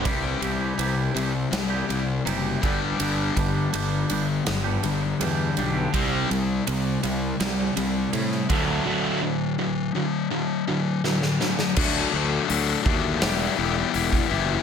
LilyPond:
<<
  \new Staff \with { instrumentName = "Clean electric guitar" } { \time 4/4 \key c \lydian \tempo 4 = 82 <c e g e' g'>8 <e g e' g'>16 <g e' g'>16 <c e g e' g'>8 <e g e' g'>8. <g e' g'>8. <c e g e' g'>8 <g, d g b d' g'>16 <g b d' g'>16 | <g, d g b d' g'>8 <g b d' g'>16 <g b d' g'>16 <g, d g b d' g'>8 <g b d' g'>8. <g b d' g'>8. <g, d g b d' g'>8 <g b d' g'>16 <g b d' g'>16 | r1 | r1 |
r1 | }
  \new Staff \with { instrumentName = "Distorted electric guitar" } { \clef bass \time 4/4 \key c \lydian <c g c'>8 <c g>8 <c g>8 <c g>8 <c g>8 <c g>8 <c g>8 <g, d g>8 | <g, d g>8 <g, d>8 <g, d>8 <g, d>8 <g, d>8 <g, d>8 <g, d>8 <g, d>8 | <c g c'>8 <c g>8 <c g>8 <c g>8 <c g>8 <c g>8 <c g>8 <d fis a>8 | <d fis a>8 <d fis>8 <d fis>8 <d fis>8 <d fis>8 <d fis>8 <d fis>8 <d fis>8 |
<d fis a d' fis'>8 <d fis a d' fis'>8 <d fis a d' fis'>8 <d fis a d' fis'>8 <e b e' g'>8 <e b e' g'>8 <e b e' g'>8 <e b e' g'>8 | }
  \new Staff \with { instrumentName = "Overdriven electric guitar" } { \clef bass \time 4/4 \key c \lydian r1 | r1 | <c g c'>8 <c g>8 <c g>8 <c g>8 <c g>8 <c g>8 <c g>8 <d fis a>8 | <d fis a>8 <d fis>8 <d fis>8 <d fis>8 <d fis>8 <d fis>8 <d fis>8 <d fis>8 |
r1 | }
  \new Staff \with { instrumentName = "Fingered electric bass" } { \clef bass \time 4/4 \key c \lydian c,8 c,8 c,8 c,8 c,8 c,8 fis,,8 g,,8 | g,,8 g,,8 g,,8 g,,8 g,,8 g,,8 e,8 b,,8 | c,8 c,8 c,8 c,8 c,8 c,8 a,8 d,8 | r1 |
d,8 d,8 d,8 ees,8 e,,8 e,,8 e,,8 fis,,8 | }
  \new DrumStaff \with { instrumentName = "Drums" } \drummode { \time 4/4 <bd cymr>8 cymr8 cymr8 cymr8 <cymr sn>8 cymr8 cymr8 <bd cymr>8 | cymr8 <bd cymr>8 cymr8 cymr8 <cymr sn>8 cymr8 cymr8 cymr8 | <bd cymr>8 cymr8 cymr8 cymr8 <cymr sn>8 cymr8 cymr16 sn16 <bd cymr>8 | r4 r4 r4 sn16 sn16 sn16 sn16 |
<cymc bd>4 hho8 bd8 <hho sn>4 hho16 bd8. | }
>>